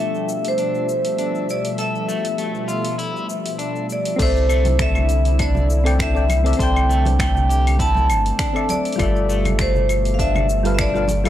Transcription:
Already playing: analog synth pad B2 F3 G3 A3 E5, synth keys G3 D4 F4 A4 D5 E5, vibraphone E5
0.00 clean electric guitar A3
0.15 cabasa
0.29 cabasa
0.45 vibraphone C5, open hi-hat, cabasa
0.58 clean electric guitar D4, open hi-hat, cabasa
0.75 cabasa
0.89 cabasa
1.05 open hi-hat, cabasa
1.18 clean electric guitar D4, open hi-hat, cabasa
1.35 cabasa
1.49 vibraphone D5, cabasa
1.65 open hi-hat, cabasa
1.78 clean electric guitar A4, vibraphone E5, open hi-hat, cabasa
1.95 cabasa
2.09 clean electric guitar A3, cabasa
2.25 open hi-hat, cabasa
2.38 clean electric guitar A3, open hi-hat, cabasa
2.55 cabasa
2.68 clean electric guitar F4, cabasa
2.85 open hi-hat, cabasa
2.98 clean electric guitar E4, open hi-hat, cabasa
3.16 cabasa
3.29 cabasa
3.46 open hi-hat, cabasa
3.59 clean electric guitar D4, open hi-hat, cabasa
3.76 cabasa
3.90 vibraphone D5, cabasa
4.05 open hi-hat, cabasa
4.16 sub bass C2, analog synth pad D3 A3 E4, clean electric guitar A3, synth keys C4 A4, kick, open hi-hat, crash, cabasa
4.21 vibraphone C5, synth keys D5 E5
4.36 cabasa
4.49 clean electric guitar A3, cabasa, claves
4.65 open hi-hat, high conga, low conga, cabasa
4.79 clean electric guitar A3, vibraphone E5, finger snap, kick, open hi-hat, cabasa
4.95 low conga, cabasa, claves
5.09 open hi-hat, cabasa
5.25 open hi-hat, cabasa
5.39 clean electric guitar D4, vibraphone D5, kick, open hi-hat, cabasa, claves
5.55 high conga, low conga, cabasa
5.70 cabasa
5.84 synth keys C4 A4 D5 G5, open hi-hat, cabasa, claves
5.99 clean electric guitar D4, vibraphone E5, finger snap, kick, open hi-hat, cabasa
6.14 synth keys C4 A4 D5 G5, cabasa
6.29 open hi-hat, high conga, cabasa, claves
6.44 synth keys C4 A4 D5 E5, open hi-hat, cabasa
6.53 synth keys C4, open hi-hat
6.59 sub bass C2, synth keys A4 D5, clean electric guitar C5, vibraphone G5, kick, open hi-hat, cabasa
6.63 synth keys G5
6.76 cabasa, claves
6.89 clean electric guitar A3, cabasa
7.05 open hi-hat, high conga, low conga, cabasa
7.19 clean electric guitar A3, vibraphone G5, finger snap, kick, open hi-hat, cabasa, claves
7.35 low conga, cabasa
7.49 clean electric guitar G4, open hi-hat, cabasa
7.67 open hi-hat, cabasa, claves
7.79 clean electric guitar E4, vibraphone A5, kick, open hi-hat, cabasa
7.94 high conga, low conga, cabasa
8.09 sub bass G1, open hi-hat, cabasa, claves
8.26 open hi-hat, cabasa
8.39 clean electric guitar D4, finger snap, kick, open hi-hat, cabasa
8.53 synth keys C4 A4 D5 E5, cabasa, claves
8.69 vibraphone D5, open hi-hat, high conga, cabasa
8.85 open hi-hat, cabasa
8.93 synth keys G3, open hi-hat
8.97 sub bass G1, analog synth pad B2, clean electric guitar A3, synth keys F4 A4 D5, kick, open hi-hat, cabasa, claves
9.02 synth keys E5
9.16 cabasa
9.29 clean electric guitar A3, cabasa
9.45 open hi-hat, high conga, low conga, cabasa, claves
9.59 clean electric guitar A3, vibraphone C5, finger snap, kick, open hi-hat, cabasa
9.74 low conga, cabasa
9.89 open hi-hat, cabasa, claves
10.05 open hi-hat, cabasa
10.14 vibraphone F5
10.19 clean electric guitar D4, vibraphone E5, kick, open hi-hat, cabasa
10.35 high conga, low conga, cabasa, claves
10.49 cabasa
10.63 synth keys G3 F4 A4 B4 F5, open hi-hat, cabasa
10.75 vibraphone E5, finger snap, open hi-hat, claves
10.79 clean electric guitar D4, vibraphone D5, kick, cabasa
10.94 synth keys G3 F4 A4 B4 F5, cabasa
11.08 open hi-hat, high conga, cabasa
11.24 synth keys G3 F4 A4, open hi-hat, cabasa, claves

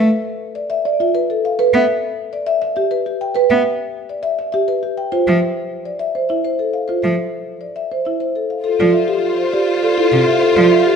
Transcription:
Already playing: marimba E5
0.55 marimba D5
0.70 marimba E5
0.85 marimba D5
1.00 marimba F4 E5
1.15 marimba B4
1.30 marimba A4
1.45 marimba F5
1.59 marimba B4
1.74 cello B3, marimba E5
2.33 marimba D5
2.46 marimba E5
2.62 marimba E5
2.76 marimba G4 E5
2.91 marimba B4
3.06 marimba G4
3.21 marimba G5
3.35 marimba B4
3.50 cello B3, marimba E5
4.09 marimba D5
4.23 marimba E5
4.39 marimba E5
4.52 marimba G4 E5
4.68 marimba B4
4.83 marimba G4
4.97 marimba G5
5.12 marimba F4 C5
5.27 cello F3, marimba E5
5.85 marimba D5
5.99 marimba E5
6.15 marimba C5
6.29 marimba E4 E5
6.45 marimba C5
6.59 marimba A4
6.73 marimba F5
6.88 marimba F4 C5
7.02 cello F3, marimba E5
7.61 marimba D5
7.76 marimba E5
7.92 marimba C5
8.05 marimba E4 E5
8.20 marimba C5
8.35 marimba A4
8.50 marimba F5
8.64 clarinet F4, string section F4 C5, marimba A4
8.79 cello F3, marimba F4 D5
8.93 marimba E5
9.08 marimba G4
9.37 marimba C5
9.53 marimba G4 D5
9.83 marimba A4 D5
9.97 marimba E4 A4
10.11 cello C3, marimba G4
10.26 marimba E5
10.42 marimba A4
10.56 cello F3, marimba F4 D5
10.71 marimba E5
10.86 marimba G4

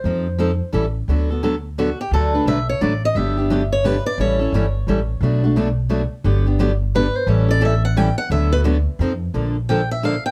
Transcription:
Already playing: steel-string acoustic guitar C5
0.04 upright bass F2, steel-string acoustic guitar F3 C4 D#4 A4
0.39 steel-string acoustic guitar F3 C4 D#4 A4
0.73 upright bass A1, steel-string acoustic guitar E3 G3 C#4 E4 A4
1.08 upright bass D2, steel-string acoustic guitar D3 F#3 B3 F#4 A4
1.30 steel-string acoustic guitar B3 F#4 A4
1.43 steel-string acoustic guitar D3 F#3 B3 F#4 A4
1.78 steel-string acoustic guitar D3 F#3 B3 F#4 A4
2.01 steel-string acoustic guitar G4
2.11 upright bass D2, steel-string acoustic guitar D3 F#3 A3 D4 F#4 A4 B4
2.34 steel-string acoustic guitar A3 D4 F#4 B4
2.46 upright bass B1, steel-string acoustic guitar D3 F#3 A3 D4 F#4 B4 E5
2.69 steel-string acoustic guitar C#5
2.81 upright bass A1, steel-string acoustic guitar D3 F#3 A3 D4 F#4 B4 D5
3.05 steel-string acoustic guitar D#5
3.15 upright bass G1, steel-string acoustic guitar D3 F#3 B3 D4 G4 E5
3.37 steel-string acoustic guitar B3 D4 G4
3.50 steel-string acoustic guitar D3 F#3 B3 D4 G4
3.72 steel-string acoustic guitar C#5
3.84 steel-string acoustic guitar D3 F#3 B3 D4 G4 B4
4.06 steel-string acoustic guitar D5
4.18 upright bass A1, steel-string acoustic guitar E3 G3 C#4 E4 A4 C#5
4.39 steel-string acoustic guitar C#4 E4 A4
4.52 upright bass G1, steel-string acoustic guitar E3 G3 C#4 E4 A4
4.87 upright bass A1, steel-string acoustic guitar E3 G3 C#4 E4 A4
5.21 upright bass B1, steel-string acoustic guitar B2 F#3 A3 D4 F#4
5.44 steel-string acoustic guitar A3 D4 F#4
5.56 steel-string acoustic guitar B2 F#3 A3 D4 F#4
5.89 steel-string acoustic guitar B2 F#3 A3 D4 F#4
6.24 upright bass G1, steel-string acoustic guitar D3 F#3 B3 D4 G4
6.46 steel-string acoustic guitar B3 D4 G4
6.59 steel-string acoustic guitar D3 F#3 B3 D4 G4
6.95 steel-string acoustic guitar D3 F#3 B3 D4 G4 B4
7.16 steel-string acoustic guitar C5
7.27 upright bass A1, steel-string acoustic guitar E3 G3 C#4 E4 A4 C#5
7.48 steel-string acoustic guitar C#4 E4 A4 D5
7.61 steel-string acoustic guitar E3 G3 C#4 E4 A4
7.65 steel-string acoustic guitar E5
7.85 steel-string acoustic guitar F#5
7.96 steel-string acoustic guitar E3 G3 C#4 E4 A4 G5
8.18 steel-string acoustic guitar F#5
8.30 upright bass D2, steel-string acoustic guitar D3 F#3 B3 F#4 A4 E5
8.52 steel-string acoustic guitar B3 F#4 A4 B4
8.64 steel-string acoustic guitar D3 F#3 B3 F#4 A4
8.99 upright bass F2, steel-string acoustic guitar F3 C4 D#4 A4
9.34 upright bass A#1, steel-string acoustic guitar D3 F3 A#3 D4 A4
9.69 steel-string acoustic guitar D3 F3 A#3 D4 A4 G5
9.91 steel-string acoustic guitar E5
10.03 steel-string acoustic guitar D3 F3 A#3 D4 A4 F5
10.26 steel-string acoustic guitar G5

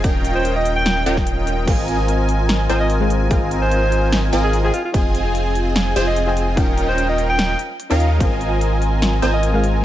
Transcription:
0.04 sub bass D#1, supersaw synth C#4 F4 A#4 D#5 G5, digital synth lead G5, kick, closed hi-hat
0.25 closed hi-hat
0.35 alto saxophone C5
0.45 closed hi-hat
0.56 alto saxophone D#5
0.66 closed hi-hat
0.76 alto saxophone G5
0.86 snare, closed hi-hat
1.06 sub bass D#1, supersaw synth C#4 F4 A#4 D#5 G5, digital synth lead G5, closed hi-hat
1.17 kick, snare
1.27 closed hi-hat
1.47 closed hi-hat
1.66 sub bass G#1, synth pluck G#3 G#4 A#4 C5 F5, supersaw synth C4 F4 A#4 D#5 G#5, digital synth lead G#5, kick, closed hi-hat, crash
1.88 closed hi-hat
2.08 closed hi-hat
2.29 closed hi-hat
2.49 snare, closed hi-hat
2.69 sub bass G#1, supersaw synth C4 F4 A#4 D#5 G#5, alto saxophone C5, digital synth lead G#5, closed hi-hat
2.80 alto saxophone D#5
2.90 closed hi-hat
3.00 synth pluck G#3 G#4 A#4 C5 F5
3.10 closed hi-hat
3.29 sub bass G#1, synth pluck G#3 G#4 A#4 C5, supersaw synth C4 F4 A#4 D#5 G#5, digital synth lead G#5, kick, closed hi-hat
3.33 synth pluck F5
3.51 closed hi-hat
3.62 alto saxophone C5
3.72 closed hi-hat
3.92 closed hi-hat
4.12 snare, closed hi-hat
4.33 sub bass G#1, supersaw synth C4 F4 A#4 D#5 G#5, digital synth lead G#5, closed hi-hat
4.44 alto saxophone G#4
4.53 closed hi-hat
4.63 synth pluck F4 C5 D#5 G5 G#5, alto saxophone G#4
4.74 alto saxophone F4, closed hi-hat
4.85 alto saxophone F4
4.92 sub bass F1, supersaw synth C4 F4 G#4 D#5 G#5, synth pluck F4 C5 D#5 G#5, digital synth lead G#5, kick, closed hi-hat
5.15 closed hi-hat
5.35 closed hi-hat
5.55 closed hi-hat
5.76 snare, closed hi-hat
5.96 sub bass F1, supersaw synth C4 F4 G#4 D#5 G#5, alto saxophone C5, digital synth lead G#5, closed hi-hat
6.07 alto saxophone D#5
6.16 closed hi-hat
6.27 synth pluck F4 C5 D#5 G5 G#5
6.37 closed hi-hat
6.55 sub bass D#1, supersaw synth C#4 F4 A#4 D#5 G5, synth pluck C#4 D#4 A#4 F5, digital synth lead G5, kick, closed hi-hat
6.59 synth pluck G5
6.78 closed hi-hat
6.89 alto saxophone C5
6.98 closed hi-hat
7.09 alto saxophone D#5
7.18 closed hi-hat
7.30 alto saxophone G5
7.39 snare, closed hi-hat
7.59 closed hi-hat
7.80 closed hi-hat
7.90 sub bass D#2, supersaw synth C#4 F4 A#4 D#5 F5, synth pluck D#4 A#4 C#5 F5 G5, digital synth lead F5
8.00 closed hi-hat
8.18 sub bass G#1, synth pluck G#3 G#4 A#4 C5, supersaw synth C4 F4 A#4 D#5 G#5, digital synth lead G#5, kick, closed hi-hat
8.22 synth pluck F5
8.41 closed hi-hat
8.61 closed hi-hat
8.82 closed hi-hat
9.02 snare, closed hi-hat
9.22 sub bass G#1, supersaw synth C4 F4 A#4 D#5 G#5, alto saxophone C5, digital synth lead G#5, closed hi-hat
9.34 alto saxophone D#5
9.43 closed hi-hat
9.53 synth pluck G#3 G#4 A#4 C5 F5
9.64 closed hi-hat
9.82 synth pluck G#3

